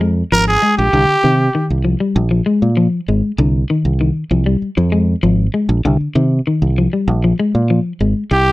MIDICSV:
0, 0, Header, 1, 6, 480
1, 0, Start_track
1, 0, Tempo, 614754
1, 725, Time_signature, 4, 2, 24, 8
1, 6654, End_track
2, 0, Start_track
2, 0, Title_t, "Trumpet"
2, 0, Program_c, 0, 56
2, 253, Note_on_c, 0, 70, 98
2, 362, Note_off_c, 0, 70, 0
2, 371, Note_on_c, 0, 68, 91
2, 592, Note_off_c, 0, 68, 0
2, 610, Note_on_c, 0, 67, 87
2, 1298, Note_off_c, 0, 67, 0
2, 6499, Note_on_c, 0, 67, 87
2, 6654, Note_off_c, 0, 67, 0
2, 6654, End_track
3, 0, Start_track
3, 0, Title_t, "Clean electric guitar"
3, 0, Program_c, 1, 27
3, 8, Note_on_c, 1, 56, 82
3, 180, Note_off_c, 1, 56, 0
3, 251, Note_on_c, 1, 53, 93
3, 423, Note_off_c, 1, 53, 0
3, 487, Note_on_c, 1, 56, 74
3, 660, Note_off_c, 1, 56, 0
3, 727, Note_on_c, 1, 50, 82
3, 900, Note_off_c, 1, 50, 0
3, 966, Note_on_c, 1, 51, 70
3, 1140, Note_off_c, 1, 51, 0
3, 1209, Note_on_c, 1, 51, 84
3, 1382, Note_off_c, 1, 51, 0
3, 1441, Note_on_c, 1, 53, 72
3, 1531, Note_off_c, 1, 53, 0
3, 1565, Note_on_c, 1, 55, 73
3, 1740, Note_off_c, 1, 55, 0
3, 1805, Note_on_c, 1, 53, 71
3, 1892, Note_off_c, 1, 53, 0
3, 1921, Note_on_c, 1, 56, 81
3, 2097, Note_off_c, 1, 56, 0
3, 2164, Note_on_c, 1, 53, 92
3, 2339, Note_off_c, 1, 53, 0
3, 2410, Note_on_c, 1, 56, 75
3, 2583, Note_off_c, 1, 56, 0
3, 2648, Note_on_c, 1, 50, 86
3, 2822, Note_off_c, 1, 50, 0
3, 2889, Note_on_c, 1, 51, 78
3, 3063, Note_off_c, 1, 51, 0
3, 3130, Note_on_c, 1, 51, 77
3, 3303, Note_off_c, 1, 51, 0
3, 3367, Note_on_c, 1, 53, 73
3, 3455, Note_off_c, 1, 53, 0
3, 3485, Note_on_c, 1, 55, 71
3, 3660, Note_off_c, 1, 55, 0
3, 3726, Note_on_c, 1, 53, 72
3, 3813, Note_off_c, 1, 53, 0
3, 3843, Note_on_c, 1, 56, 82
3, 4019, Note_off_c, 1, 56, 0
3, 4084, Note_on_c, 1, 53, 87
3, 4259, Note_off_c, 1, 53, 0
3, 4325, Note_on_c, 1, 56, 81
3, 4500, Note_off_c, 1, 56, 0
3, 4568, Note_on_c, 1, 50, 92
3, 4741, Note_off_c, 1, 50, 0
3, 4807, Note_on_c, 1, 51, 73
3, 4981, Note_off_c, 1, 51, 0
3, 5053, Note_on_c, 1, 51, 84
3, 5225, Note_off_c, 1, 51, 0
3, 5295, Note_on_c, 1, 53, 75
3, 5380, Note_off_c, 1, 53, 0
3, 5413, Note_on_c, 1, 55, 75
3, 5585, Note_off_c, 1, 55, 0
3, 5654, Note_on_c, 1, 53, 71
3, 5738, Note_off_c, 1, 53, 0
3, 5774, Note_on_c, 1, 56, 80
3, 5945, Note_off_c, 1, 56, 0
3, 6014, Note_on_c, 1, 53, 83
3, 6185, Note_off_c, 1, 53, 0
3, 6254, Note_on_c, 1, 56, 75
3, 6424, Note_off_c, 1, 56, 0
3, 6654, End_track
4, 0, Start_track
4, 0, Title_t, "Fingered electric bass"
4, 0, Program_c, 2, 33
4, 0, Note_on_c, 2, 41, 87
4, 169, Note_off_c, 2, 41, 0
4, 249, Note_on_c, 2, 32, 90
4, 436, Note_off_c, 2, 32, 0
4, 612, Note_on_c, 2, 34, 104
4, 703, Note_off_c, 2, 34, 0
4, 728, Note_on_c, 2, 36, 109
4, 822, Note_off_c, 2, 36, 0
4, 969, Note_on_c, 2, 48, 90
4, 1156, Note_off_c, 2, 48, 0
4, 1330, Note_on_c, 2, 36, 78
4, 1518, Note_off_c, 2, 36, 0
4, 1684, Note_on_c, 2, 34, 107
4, 1873, Note_off_c, 2, 34, 0
4, 2047, Note_on_c, 2, 46, 81
4, 2236, Note_off_c, 2, 46, 0
4, 2407, Note_on_c, 2, 32, 84
4, 2502, Note_off_c, 2, 32, 0
4, 2641, Note_on_c, 2, 36, 107
4, 2832, Note_off_c, 2, 36, 0
4, 3006, Note_on_c, 2, 36, 89
4, 3195, Note_off_c, 2, 36, 0
4, 3363, Note_on_c, 2, 36, 88
4, 3553, Note_off_c, 2, 36, 0
4, 3728, Note_on_c, 2, 41, 94
4, 4010, Note_off_c, 2, 41, 0
4, 4083, Note_on_c, 2, 32, 94
4, 4273, Note_off_c, 2, 32, 0
4, 4442, Note_on_c, 2, 34, 105
4, 4538, Note_off_c, 2, 34, 0
4, 4569, Note_on_c, 2, 36, 104
4, 4664, Note_off_c, 2, 36, 0
4, 4804, Note_on_c, 2, 48, 95
4, 4994, Note_off_c, 2, 48, 0
4, 5168, Note_on_c, 2, 36, 84
4, 5356, Note_off_c, 2, 36, 0
4, 5525, Note_on_c, 2, 34, 107
4, 5714, Note_off_c, 2, 34, 0
4, 5893, Note_on_c, 2, 46, 87
4, 6078, Note_off_c, 2, 46, 0
4, 6250, Note_on_c, 2, 32, 86
4, 6343, Note_off_c, 2, 32, 0
4, 6491, Note_on_c, 2, 36, 104
4, 6654, Note_off_c, 2, 36, 0
4, 6654, End_track
5, 0, Start_track
5, 0, Title_t, "Muted clean electric guitar strokes"
5, 6490, Note_on_c, 9, 29, 91
5, 6568, Note_off_c, 9, 29, 0
5, 6654, End_track
6, 0, Start_track
6, 0, Title_t, "Muted fingered electric bass strokes"
6, 3607, Note_on_c, 9, 29, 38
6, 3685, Note_off_c, 9, 29, 0
6, 4689, Note_on_c, 9, 29, 36
6, 4767, Note_off_c, 9, 29, 0
6, 6654, End_track
0, 0, End_of_file